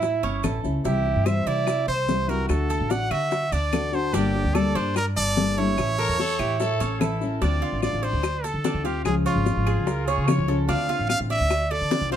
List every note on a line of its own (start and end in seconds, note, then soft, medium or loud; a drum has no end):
0.00 0.21 A2 medium
0.00 0.22 E4 medium
0.00 0.60 E4 medium
0.00 muted nylon-string guitar stroke medium
0.00 high bongo medium
0.00 maracas medium
0.23 0.42 G1 medium
0.23 0.43 C#4 medium
0.43 0.62 A1 medium
0.43 0.63 E3 soft
0.43 0.64 A3 medium
0.43 0.64 C#4 medium
0.43 0.62 E4 soft
0.43 0.84 A4 medium
0.43 high bongo soft
0.43 low bongo medium
0.43 claves medium
0.43 maracas medium
0.64 0.83 C#2 medium
0.64 0.85 A3 medium
0.64 0.84 C#4 medium
0.64 0.84 E4 medium
0.64 high bongo soft
0.64 maracas soft
0.84 1.14 C2 loud
0.84 1.25 C3 medium
0.84 1.24 E3 medium
0.84 1.25 G3 medium
0.84 1.25 C4 medium
0.84 1.25 E4 medium
0.84 1.26 E4 medium
0.84 1.28 G4 medium
0.84 high bongo medium
0.84 maracas medium
1.06 high bongo soft
1.16 1.45 G2 medium
1.25 1.66 E3 soft
1.25 1.66 G3 medium
1.25 1.67 C4 soft
1.25 1.67 E4 soft
1.25 1.46 C5 medium
1.25 1.49 E5 loud
1.25 high bongo medium
1.25 claves medium
1.25 maracas medium
1.46 1.85 C3 medium
1.46 1.86 E4 medium
1.46 1.88 D5 loud
1.46 high bongo soft
1.46 maracas soft
1.67 muted nylon-string guitar stroke medium
1.67 high bongo medium
1.67 claves medium
1.67 maracas medium
1.87 2.46 C2 medium
1.87 2.28 C5 medium
1.87 2.31 C5 loud
2.08 2.28 E3 medium
2.08 2.28 G3 medium
2.08 2.28 C4 medium
2.08 2.27 E4 medium
2.08 high bongo soft
2.08 low bongo medium
2.08 maracas medium
2.28 2.48 E3 medium
2.28 2.49 G3 medium
2.28 2.49 C4 medium
2.28 2.48 E4 medium
2.28 2.69 F#4 medium
2.28 2.49 A#4 loud
2.28 high bongo soft
2.28 maracas soft
2.49 2.79 D2 medium
2.49 2.89 D3 medium
2.49 2.90 A3 medium
2.49 2.90 D4 medium
2.49 2.91 F#4 medium
2.49 2.92 A4 medium
2.49 high bongo medium
2.49 claves medium
2.49 maracas medium
2.70 2.90 A4 medium
2.70 high bongo soft
2.70 maracas medium
2.80 3.10 A1 medium
2.90 3.30 D3 soft
2.90 3.30 A3 medium
2.90 3.31 D4 medium
2.90 3.31 F#4 medium
2.90 3.11 D5 medium
2.90 3.13 F#5 loud
2.90 high bongo medium
2.90 maracas medium
3.11 3.50 D3 medium
3.11 3.51 F#4 medium
3.11 3.54 E5 loud
3.11 high bongo soft
3.11 claves medium
3.11 maracas soft
3.31 muted nylon-string guitar stroke medium
3.31 high bongo medium
3.31 maracas medium
3.52 4.11 D2 medium
3.52 3.72 D4 medium
3.52 3.96 D5 loud
3.52 maracas medium
3.72 3.92 D3 medium
3.72 3.93 A3 medium
3.72 3.93 D4 medium
3.72 3.91 F#4 medium
3.72 4.13 A4 medium
3.72 high bongo soft
3.72 low bongo medium
3.72 claves medium
3.72 maracas medium
3.92 4.14 A3 soft
3.92 4.13 D4 medium
3.92 4.13 F#4 medium
3.92 4.16 C5 loud
3.92 high bongo soft
3.92 maracas soft
4.13 4.43 G1 loud
4.13 4.54 D3 medium
4.13 4.53 G3 medium
4.13 4.54 A#3 medium
4.13 4.54 D4 medium
4.13 4.55 D4 medium
4.13 4.57 G4 loud
4.13 4.55 A4 medium
4.13 high bongo medium
4.13 maracas medium
4.35 high bongo soft
4.44 4.74 D2 medium
4.54 4.95 G3 soft
4.54 4.95 A#3 medium
4.54 4.96 D4 medium
4.54 4.75 A4 medium
4.54 4.96 A4 medium
4.54 4.77 D5 loud
4.54 high bongo medium
4.54 claves medium
4.54 maracas medium
4.75 5.14 G2 medium
4.75 5.15 D4 medium
4.75 4.96 C5 medium
4.75 high bongo soft
4.75 maracas soft
4.96 5.06 A#4 loud
4.96 muted nylon-string guitar stroke medium
4.96 high bongo medium
4.96 claves medium
4.96 maracas medium
5.16 5.75 G1 medium
5.16 5.56 A4 medium
5.16 5.59 D5 loud
5.16 maracas medium
5.37 5.57 G3 medium
5.37 5.57 A#3 medium
5.37 5.56 D4 medium
5.37 5.55 A4 medium
5.37 high bongo soft
5.37 low bongo medium
5.37 maracas medium
5.57 5.77 G3 soft
5.57 5.78 A#3 medium
5.57 5.77 D4 medium
5.57 5.98 E4 medium
5.57 5.77 A4 medium
5.57 7.01 C#5 loud
5.57 high bongo soft
5.57 maracas soft
5.78 6.07 A1 medium
5.78 6.18 E3 medium
5.78 6.19 A3 medium
5.78 6.19 C#4 medium
5.78 6.19 E4 medium
5.78 high bongo medium
5.78 claves medium
5.78 maracas medium
5.98 6.18 A4 medium
5.98 6.18 A#4 loud
5.98 high bongo soft
6.09 6.38 E2 medium
6.19 6.59 E3 medium
6.19 6.60 A3 medium
6.19 6.60 C#4 soft
6.19 6.41 A4 loud
6.19 6.39 C#5 medium
6.19 high bongo medium
6.19 maracas medium
6.39 6.79 A2 medium
6.39 6.79 E4 medium
6.39 6.59 G4 medium
6.39 high bongo soft
6.39 claves medium
6.39 maracas soft
6.60 7.02 A4 loud
6.60 muted nylon-string guitar stroke medium
6.60 high bongo medium
6.60 maracas medium
6.80 7.39 A1 medium
6.80 7.00 C#4 medium
6.80 maracas medium
7.00 7.21 E3 medium
7.00 7.21 A3 medium
7.00 7.21 C#4 medium
7.00 7.42 E4 medium
7.00 7.20 E4 medium
7.00 7.41 A4 medium
7.00 high bongo soft
7.00 low bongo medium
7.00 claves medium
7.00 maracas medium
7.21 7.41 A3 soft
7.21 7.42 C#4 medium
7.21 7.41 E4 medium
7.21 high bongo soft
7.21 maracas soft
7.41 7.61 D2 medium
7.41 7.81 D3 medium
7.41 7.82 A3 medium
7.41 7.83 C4 medium
7.41 7.62 D4 medium
7.41 7.83 F4 medium
7.41 7.81 D5 medium
7.41 high bongo medium
7.41 maracas medium
7.62 8.02 F4 medium
7.72 7.92 A1 medium
7.82 8.22 D3 medium
7.82 8.23 A3 medium
7.82 8.23 C4 medium
7.82 8.23 F4 medium
7.82 8.05 D5 loud
7.82 high bongo medium
7.82 claves medium
7.82 maracas medium
7.93 8.13 A1 medium
8.03 8.46 C5 loud
8.03 8.43 D5 medium
8.03 high bongo soft
8.03 maracas soft
8.13 8.52 D2 medium
8.23 muted nylon-string guitar stroke medium
8.23 high bongo medium
8.23 claves medium
8.23 maracas medium
8.44 8.64 A4 medium
8.44 8.87 A4 medium
8.44 high bongo soft
8.44 maracas medium
8.54 8.74 D3 medium
8.64 8.84 D3 medium
8.64 8.84 A3 medium
8.64 8.84 C4 medium
8.64 8.84 D4 medium
8.64 8.83 F4 medium
8.64 high bongo medium
8.64 low bongo medium
8.64 maracas medium
8.74 9.04 D2 medium
8.84 9.05 A3 soft
8.84 9.05 C4 medium
8.84 9.04 F4 medium
8.84 9.25 F4 medium
8.84 9.05 G4 medium
8.84 high bongo soft
8.84 maracas soft
9.05 9.25 C#2 medium
9.05 9.45 C#3 medium
9.05 9.44 F3 medium
9.05 9.45 G#3 medium
9.05 9.46 C#4 medium
9.05 9.46 F4 medium
9.05 9.15 G#4 medium
9.05 high bongo medium
9.05 claves medium
9.05 maracas medium
9.26 10.44 F4 loud
9.26 9.66 C#5 medium
9.26 high bongo soft
9.26 maracas medium
9.36 9.55 G#1 medium
9.45 9.86 F3 soft
9.45 9.86 G#3 medium
9.45 9.87 C#4 soft
9.45 9.87 F4 medium
9.45 high bongo medium
9.45 maracas medium
9.57 9.76 G#1 medium
9.66 9.88 G#4 medium
9.66 10.06 G#4 medium
9.66 claves medium
9.66 maracas soft
9.77 10.16 C#2 medium
9.87 10.08 A#4 medium
9.87 muted nylon-string guitar stroke medium
9.87 high bongo medium
9.87 maracas medium
10.06 10.29 G#4 medium
10.06 10.47 C#5 medium
10.06 high bongo soft
10.06 maracas medium
10.18 10.37 C#3 medium
10.27 10.47 F3 medium
10.27 10.48 G#3 medium
10.27 10.48 C#4 medium
10.27 10.47 F4 medium
10.27 10.58 C#5 loud
10.27 high bongo medium
10.27 low bongo loud
10.27 claves medium
10.27 maracas medium
10.38 10.67 C#2 medium
10.48 10.68 F3 medium
10.48 10.69 G#3 medium
10.48 10.68 C#4 medium
10.48 10.68 F4 medium
10.48 10.68 A4 medium
10.48 high bongo soft
10.48 maracas soft
10.69 10.88 D2 medium
10.69 11.08 D3 medium
10.69 11.09 A3 medium
10.69 11.10 C4 medium
10.69 10.89 D4 medium
10.69 11.10 F4 medium
10.69 11.07 F5 loud
10.69 high bongo medium
10.69 maracas medium
10.89 11.29 F4 medium
10.99 11.19 A1 medium
11.09 11.49 D3 medium
11.09 11.49 A3 medium
11.09 11.50 C4 soft
11.09 11.50 F4 medium
11.09 11.19 F5 loud
11.09 high bongo medium
11.09 claves medium
11.09 maracas medium
11.20 11.39 A1 medium
11.30 11.70 D5 medium
11.30 11.73 E5 loud
11.30 high bongo soft
11.30 maracas soft
11.40 11.79 D2 medium
11.50 muted nylon-string guitar stroke medium
11.50 high bongo medium
11.50 claves medium
11.50 maracas medium
11.71 11.91 A4 medium
11.71 12.12 D5 loud
11.71 high bongo soft
11.81 12.00 D3 medium
11.91 12.11 D3 medium
11.91 12.11 A3 medium
11.91 12.11 C4 medium
11.91 12.11 D4 medium
11.91 12.10 F4 medium
11.91 high bongo medium
11.91 low bongo loud
11.91 maracas medium
12.02 12.16 C2 medium
12.11 12.16 C4 medium
12.11 12.16 F4 medium
12.11 12.16 C5 loud
12.11 high bongo soft
12.11 maracas soft